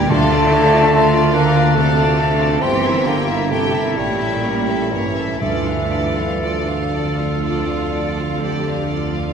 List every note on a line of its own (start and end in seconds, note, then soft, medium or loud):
0.00 0.12 G3 loud
0.00 0.11 E4 medium
0.00 0.11 D5 medium
0.00 0.12 G5 medium
0.09 2.63 D2 medium
0.09 2.57 D2 medium
0.09 1.32 D3 medium
0.09 1.29 D3 medium
0.09 1.33 A3 loud
0.09 1.35 A3 loud
0.09 0.29 D4 medium
0.09 0.53 F4 medium
0.09 0.29 A4 medium
0.09 0.30 F5 medium
0.09 1.32 A5 loud
0.31 0.51 F4 medium
0.31 0.52 F4 medium
0.31 0.51 D5 medium
0.52 0.72 D4 medium
0.52 0.82 E4 medium
0.52 0.73 A4 medium
0.52 0.72 F5 medium
0.73 0.92 F4 medium
0.73 0.93 F4 medium
0.73 0.92 D5 medium
0.92 1.11 D4 medium
0.92 1.36 F4 medium
0.92 1.12 A4 medium
0.92 1.12 F5 medium
1.14 1.33 F4 medium
1.14 1.34 F4 medium
1.14 1.34 D5 medium
1.33 1.74 D3 medium
1.33 1.75 A#3 medium
1.33 1.76 A#3 loud
1.33 2.34 D4 medium
1.33 1.55 D4 medium
1.33 1.54 A4 medium
1.33 1.54 F5 medium
1.33 1.77 A#5 medium
1.55 1.75 F4 medium
1.55 1.75 D5 medium
1.75 2.61 C3 medium
1.75 2.61 A3 medium
1.75 2.62 A3 medium
1.75 1.95 D4 medium
1.75 1.95 A4 medium
1.75 1.96 F5 medium
1.75 2.64 A5 medium
1.96 2.18 F4 medium
1.96 2.19 D5 medium
2.17 2.39 D4 medium
2.17 2.39 A4 medium
2.17 2.40 F5 medium
2.39 2.61 F4 medium
2.39 2.61 D5 medium
2.59 3.96 G1 medium
2.59 3.97 G1 medium
2.59 3.05 E3 medium
2.59 3.08 C4 loud
2.59 3.04 C4 medium
2.59 5.43 E4 medium
2.59 2.80 G4 medium
2.59 2.81 G4 medium
2.59 2.81 G5 medium
2.59 3.09 C6 medium
2.82 3.04 E4 medium
2.82 3.06 A#4 medium
2.82 3.05 E5 medium
3.04 3.50 D3 medium
3.04 3.50 A#3 medium
3.04 3.51 A#3 medium
3.04 3.27 G4 medium
3.04 3.28 G5 medium
3.04 3.53 A#5 medium
3.26 3.49 E4 medium
3.26 3.50 A#4 soft
3.26 3.50 E5 soft
3.48 3.96 C3 medium
3.48 3.96 A3 medium
3.48 3.99 A3 medium
3.48 3.70 G4 medium
3.48 3.72 G4 medium
3.48 3.71 G5 medium
3.48 4.01 A5 medium
3.72 3.96 E4 soft
3.72 3.96 A#4 soft
3.72 3.96 E5 medium
3.96 5.39 A1 medium
3.96 4.91 A#2 medium
3.96 4.91 G3 medium
3.96 4.93 G3 medium
3.96 4.18 A#3 medium
3.96 4.18 A#4 soft
3.96 4.18 C#5 medium
3.96 4.95 G5 medium
4.20 4.43 C#4 soft
4.20 4.44 A4 soft
4.20 4.44 E5 soft
4.43 4.67 A#3 soft
4.43 4.68 A#4 soft
4.43 4.67 C#5 soft
4.68 4.92 C#4 soft
4.68 4.92 A4 soft
4.68 4.92 E5 soft
4.91 5.39 G2 medium
4.91 5.40 E3 medium
4.91 5.14 A#3 soft
4.91 5.15 A#4 soft
4.91 5.15 C#5 soft
4.91 5.42 E5 medium
5.16 5.41 C#4 soft
5.16 5.41 A4 soft
5.16 5.41 E5 soft
5.41 9.33 D2 medium
5.41 9.33 D2 soft
5.41 6.88 G2 medium
5.41 6.87 D3 medium
5.41 6.56 E3 medium
5.41 6.88 E3 medium
5.41 5.64 F4 soft
5.41 9.33 A4 medium
5.41 5.65 A4 soft
5.41 5.64 D5 soft
5.41 6.57 E5 medium
5.66 5.91 D4 soft
5.66 5.91 F4 soft
5.66 5.91 F5 soft
5.91 6.16 F4 soft
5.91 6.16 A4 soft
5.91 6.16 D5 soft
6.15 6.40 D4 soft
6.15 6.41 F4 soft
6.15 6.41 F5 soft
6.40 6.64 F4 soft
6.40 6.64 A4 soft
6.40 6.65 D5 soft
6.65 6.91 D4 soft
6.65 6.92 F4 soft
6.65 6.92 F5 soft
6.90 9.33 F2 soft
6.90 9.33 D3 medium
6.90 9.33 D3 soft
6.90 8.36 F4 medium
6.90 7.17 A4 soft
6.90 9.33 D5 soft
6.90 7.18 D5 soft
7.17 7.42 F4 soft
7.17 7.43 F5 soft
7.42 7.65 A4 soft
7.42 7.67 D5 soft
7.67 7.91 F4 soft
7.67 7.93 F5 soft
7.92 8.16 A4 soft
7.92 8.18 D5 soft
8.16 8.41 F4 soft
8.16 8.42 F5 soft
8.40 8.89 G4 medium
8.40 8.64 A4 soft
8.40 8.64 D5 soft
8.67 8.91 F4 soft
8.67 8.91 F5 soft
8.90 9.33 F4 soft
8.90 9.15 A4 soft
8.90 9.14 D5 soft
9.15 9.33 F4 soft
9.15 9.33 F5 soft